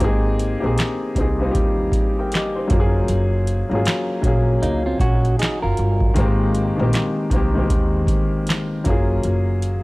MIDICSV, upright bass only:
0, 0, Header, 1, 2, 480
1, 0, Start_track
1, 0, Key_signature, -4, "major"
1, 0, Tempo, 769231
1, 7, Time_signature, 4, 2, 24, 8
1, 6135, End_track
2, 0, Start_track
2, 0, Title_t, "Upright bass"
2, 0, Program_c, 0, 32
2, 9, Note_on_c, 0, 32, 86
2, 335, Note_off_c, 0, 32, 0
2, 398, Note_on_c, 0, 34, 87
2, 474, Note_off_c, 0, 34, 0
2, 722, Note_on_c, 0, 36, 83
2, 926, Note_off_c, 0, 36, 0
2, 967, Note_on_c, 0, 39, 87
2, 1169, Note_off_c, 0, 39, 0
2, 1689, Note_on_c, 0, 30, 99
2, 1890, Note_off_c, 0, 30, 0
2, 1931, Note_on_c, 0, 30, 94
2, 2255, Note_off_c, 0, 30, 0
2, 2317, Note_on_c, 0, 32, 98
2, 2393, Note_off_c, 0, 32, 0
2, 2641, Note_on_c, 0, 34, 86
2, 2845, Note_off_c, 0, 34, 0
2, 2891, Note_on_c, 0, 37, 91
2, 3091, Note_off_c, 0, 37, 0
2, 3118, Note_on_c, 0, 34, 91
2, 3324, Note_off_c, 0, 34, 0
2, 3519, Note_on_c, 0, 30, 79
2, 3595, Note_off_c, 0, 30, 0
2, 3611, Note_on_c, 0, 31, 84
2, 3811, Note_off_c, 0, 31, 0
2, 3849, Note_on_c, 0, 32, 102
2, 4174, Note_off_c, 0, 32, 0
2, 4238, Note_on_c, 0, 34, 93
2, 4314, Note_off_c, 0, 34, 0
2, 4560, Note_on_c, 0, 36, 83
2, 4765, Note_off_c, 0, 36, 0
2, 4806, Note_on_c, 0, 39, 84
2, 5008, Note_off_c, 0, 39, 0
2, 5528, Note_on_c, 0, 30, 93
2, 5730, Note_off_c, 0, 30, 0
2, 5770, Note_on_c, 0, 30, 85
2, 6095, Note_off_c, 0, 30, 0
2, 6135, End_track
0, 0, End_of_file